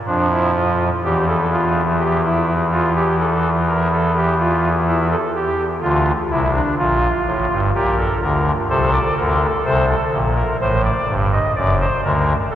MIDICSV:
0, 0, Header, 1, 2, 480
1, 0, Start_track
1, 0, Tempo, 956938
1, 36, Time_signature, 4, 2, 24, 8
1, 6295, End_track
2, 0, Start_track
2, 0, Title_t, "Pipe organ"
2, 0, Program_c, 0, 19
2, 33, Note_on_c, 0, 41, 52
2, 34, Note_on_c, 0, 53, 56
2, 34, Note_on_c, 0, 62, 58
2, 138, Note_off_c, 0, 62, 0
2, 157, Note_on_c, 0, 64, 72
2, 260, Note_off_c, 0, 64, 0
2, 277, Note_on_c, 0, 65, 55
2, 426, Note_off_c, 0, 65, 0
2, 449, Note_off_c, 0, 41, 0
2, 449, Note_off_c, 0, 53, 0
2, 519, Note_on_c, 0, 40, 62
2, 520, Note_on_c, 0, 52, 54
2, 521, Note_on_c, 0, 67, 74
2, 623, Note_off_c, 0, 67, 0
2, 640, Note_on_c, 0, 69, 68
2, 743, Note_off_c, 0, 69, 0
2, 763, Note_on_c, 0, 65, 63
2, 911, Note_off_c, 0, 65, 0
2, 999, Note_on_c, 0, 67, 72
2, 1103, Note_off_c, 0, 67, 0
2, 1120, Note_on_c, 0, 64, 60
2, 1270, Note_off_c, 0, 64, 0
2, 1363, Note_on_c, 0, 65, 67
2, 1466, Note_off_c, 0, 65, 0
2, 1481, Note_on_c, 0, 67, 72
2, 1585, Note_off_c, 0, 67, 0
2, 1604, Note_on_c, 0, 69, 69
2, 1752, Note_off_c, 0, 69, 0
2, 1845, Note_on_c, 0, 70, 67
2, 1947, Note_off_c, 0, 70, 0
2, 1966, Note_on_c, 0, 69, 72
2, 2067, Note_off_c, 0, 69, 0
2, 2084, Note_on_c, 0, 67, 73
2, 2186, Note_off_c, 0, 67, 0
2, 2204, Note_on_c, 0, 65, 64
2, 2352, Note_off_c, 0, 65, 0
2, 2442, Note_on_c, 0, 64, 76
2, 2545, Note_off_c, 0, 64, 0
2, 2563, Note_on_c, 0, 69, 75
2, 2585, Note_off_c, 0, 40, 0
2, 2585, Note_off_c, 0, 52, 0
2, 2666, Note_off_c, 0, 69, 0
2, 2682, Note_on_c, 0, 67, 61
2, 2830, Note_off_c, 0, 67, 0
2, 2918, Note_on_c, 0, 38, 69
2, 2919, Note_on_c, 0, 50, 63
2, 2919, Note_on_c, 0, 65, 82
2, 3067, Note_off_c, 0, 38, 0
2, 3068, Note_off_c, 0, 50, 0
2, 3068, Note_off_c, 0, 65, 0
2, 3161, Note_on_c, 0, 64, 61
2, 3162, Note_on_c, 0, 36, 43
2, 3162, Note_on_c, 0, 48, 43
2, 3264, Note_off_c, 0, 64, 0
2, 3278, Note_on_c, 0, 62, 70
2, 3310, Note_off_c, 0, 36, 0
2, 3310, Note_off_c, 0, 48, 0
2, 3382, Note_off_c, 0, 62, 0
2, 3401, Note_on_c, 0, 46, 65
2, 3402, Note_on_c, 0, 65, 79
2, 3403, Note_on_c, 0, 34, 61
2, 3550, Note_off_c, 0, 46, 0
2, 3551, Note_off_c, 0, 34, 0
2, 3642, Note_on_c, 0, 33, 56
2, 3642, Note_on_c, 0, 45, 61
2, 3744, Note_off_c, 0, 45, 0
2, 3745, Note_off_c, 0, 33, 0
2, 3762, Note_on_c, 0, 43, 53
2, 3763, Note_on_c, 0, 31, 52
2, 3814, Note_off_c, 0, 65, 0
2, 3864, Note_off_c, 0, 43, 0
2, 3865, Note_off_c, 0, 31, 0
2, 3883, Note_on_c, 0, 46, 64
2, 3884, Note_on_c, 0, 34, 59
2, 3884, Note_on_c, 0, 67, 75
2, 3884, Note_on_c, 0, 70, 61
2, 3986, Note_off_c, 0, 67, 0
2, 4003, Note_on_c, 0, 69, 72
2, 4031, Note_off_c, 0, 34, 0
2, 4031, Note_off_c, 0, 46, 0
2, 4105, Note_off_c, 0, 69, 0
2, 4111, Note_off_c, 0, 70, 0
2, 4119, Note_on_c, 0, 38, 61
2, 4121, Note_on_c, 0, 50, 62
2, 4121, Note_on_c, 0, 70, 66
2, 4267, Note_off_c, 0, 38, 0
2, 4268, Note_off_c, 0, 70, 0
2, 4269, Note_off_c, 0, 50, 0
2, 4363, Note_on_c, 0, 36, 65
2, 4363, Note_on_c, 0, 48, 63
2, 4363, Note_on_c, 0, 72, 80
2, 4364, Note_on_c, 0, 69, 68
2, 4464, Note_off_c, 0, 72, 0
2, 4480, Note_on_c, 0, 74, 84
2, 4509, Note_off_c, 0, 48, 0
2, 4510, Note_off_c, 0, 36, 0
2, 4582, Note_off_c, 0, 74, 0
2, 4600, Note_on_c, 0, 38, 62
2, 4600, Note_on_c, 0, 50, 61
2, 4600, Note_on_c, 0, 70, 67
2, 4748, Note_off_c, 0, 38, 0
2, 4748, Note_off_c, 0, 50, 0
2, 4748, Note_off_c, 0, 70, 0
2, 4841, Note_on_c, 0, 48, 73
2, 4841, Note_on_c, 0, 72, 86
2, 4842, Note_on_c, 0, 36, 74
2, 4943, Note_off_c, 0, 72, 0
2, 4950, Note_off_c, 0, 69, 0
2, 4960, Note_on_c, 0, 69, 77
2, 4988, Note_off_c, 0, 48, 0
2, 4989, Note_off_c, 0, 36, 0
2, 5078, Note_on_c, 0, 46, 53
2, 5079, Note_on_c, 0, 34, 47
2, 5108, Note_off_c, 0, 69, 0
2, 5198, Note_on_c, 0, 70, 69
2, 5227, Note_off_c, 0, 34, 0
2, 5227, Note_off_c, 0, 46, 0
2, 5301, Note_off_c, 0, 70, 0
2, 5320, Note_on_c, 0, 45, 69
2, 5320, Note_on_c, 0, 72, 87
2, 5321, Note_on_c, 0, 33, 75
2, 5422, Note_off_c, 0, 72, 0
2, 5439, Note_on_c, 0, 74, 72
2, 5468, Note_off_c, 0, 33, 0
2, 5468, Note_off_c, 0, 45, 0
2, 5558, Note_on_c, 0, 31, 64
2, 5559, Note_on_c, 0, 43, 66
2, 5587, Note_off_c, 0, 74, 0
2, 5679, Note_on_c, 0, 75, 67
2, 5706, Note_off_c, 0, 31, 0
2, 5707, Note_off_c, 0, 43, 0
2, 5781, Note_off_c, 0, 75, 0
2, 5798, Note_on_c, 0, 30, 67
2, 5798, Note_on_c, 0, 42, 64
2, 5798, Note_on_c, 0, 74, 81
2, 5900, Note_off_c, 0, 74, 0
2, 5920, Note_on_c, 0, 72, 78
2, 5946, Note_off_c, 0, 30, 0
2, 5946, Note_off_c, 0, 42, 0
2, 6022, Note_off_c, 0, 72, 0
2, 6039, Note_on_c, 0, 38, 65
2, 6040, Note_on_c, 0, 50, 62
2, 6040, Note_on_c, 0, 70, 72
2, 6187, Note_off_c, 0, 38, 0
2, 6187, Note_off_c, 0, 50, 0
2, 6187, Note_off_c, 0, 70, 0
2, 6275, Note_on_c, 0, 69, 78
2, 6276, Note_on_c, 0, 36, 67
2, 6277, Note_on_c, 0, 48, 68
2, 6295, Note_off_c, 0, 36, 0
2, 6295, Note_off_c, 0, 48, 0
2, 6295, Note_off_c, 0, 69, 0
2, 6295, End_track
0, 0, End_of_file